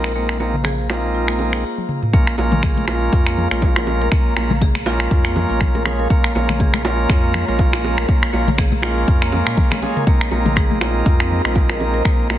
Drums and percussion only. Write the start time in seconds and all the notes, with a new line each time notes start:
0.04 finger snap
0.29 finger snap
0.40 high bongo, low bongo
0.54 mid tom
0.64 finger snap, mid tom, low bongo
0.90 finger snap, high bongo
1.28 finger snap
1.39 low bongo
1.53 finger snap
1.78 high tom
1.89 mid tom
2.03 mid tom
2.13 kick
2.27 finger snap
2.38 high bongo, low bongo, muted conga
2.52 mid tom, high conga, low conga
2.63 finger snap, kick, mid tom, low bongo, high conga
2.76 muted conga, high conga
2.88 finger snap, high bongo
3.12 kick, low bongo, muted conga
3.27 finger snap
3.38 low conga
3.51 finger snap, muted conga, high conga
3.62 kick, high bongo
3.76 finger snap, high bongo
3.87 low bongo
4.02 muted conga
4.12 finger snap, kick
4.37 finger snap, high bongo, muted conga
4.50 mid tom, high conga, low conga
4.61 kick, mid tom, low bongo, high conga
4.75 finger snap, muted conga, high conga
4.86 high bongo
5.00 finger snap
5.11 kick, muted conga
5.25 finger snap
5.36 low bongo, low conga
5.49 muted conga, high conga
5.61 finger snap, kick, low conga
5.75 low bongo, high conga, low conga
5.86 finger snap, low bongo
5.99 muted conga
6.10 kick
6.24 finger snap
6.35 high bongo, low bongo, muted conga
6.49 finger snap, mid tom, high conga, low conga
6.60 kick, mid tom, low bongo, high conga
6.74 finger snap, muted conga, high conga
6.85 high bongo
7.09 finger snap, kick, low bongo, muted conga
7.34 finger snap, low conga
7.48 muted conga, high conga
7.59 kick, high bongo
7.73 finger snap, high bongo
7.84 low bongo
7.98 finger snap, muted conga
8.09 kick
8.23 finger snap
8.33 high bongo, muted conga
8.48 mid tom, high conga, low conga
8.58 finger snap, kick, mid tom, low bongo, high conga
8.72 muted conga, high conga
8.82 finger snap, high bongo
9.08 kick, muted conga
9.22 finger snap
9.32 low bongo, low conga
9.46 finger snap, muted conga, high conga
9.57 kick, low conga
9.71 finger snap, low bongo, high conga, low conga
9.83 low bongo
9.96 mid tom, muted conga
10.07 kick
10.21 finger snap
10.31 high bongo, low bongo, muted conga
10.46 mid tom, high conga, low conga
10.56 finger snap, kick, mid tom, low bongo, high conga
10.71 muted conga, high conga
10.81 finger snap, high bongo
11.06 kick, low bongo, muted conga
11.20 finger snap
11.32 low conga
11.45 finger snap, muted conga, high conga
11.55 kick, high bongo
11.69 finger snap, high bongo
11.80 low bongo
11.94 muted conga
12.05 finger snap, kick
12.30 finger snap, high bongo, muted conga